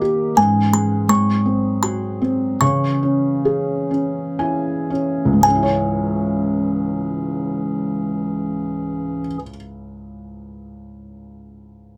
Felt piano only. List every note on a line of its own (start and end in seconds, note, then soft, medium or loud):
0.00 0.33 D#3 medium
0.00 0.39 G4 medium
0.00 0.35 A#4 soft
0.00 0.34 D#5 soft
0.37 1.07 G#2 medium
0.73 1.08 G#3 soft
1.09 2.57 G#2 medium
1.46 2.20 C4 soft
1.83 2.59 F#4 soft
2.22 2.60 C4 medium
2.61 5.41 C#3 medium
3.03 3.89 C#4 soft
3.45 5.40 G#4 soft
3.91 4.89 C#4 soft
4.39 5.41 E4 soft
4.39 5.41 G#5 medium
4.90 5.43 C#4 soft
5.25 9.19 C#2 medium
5.33 9.26 G#2 soft
5.41 9.34 G#3 soft
5.48 9.41 C#4 soft
5.55 9.49 E4 soft
5.63 9.56 C#5 medium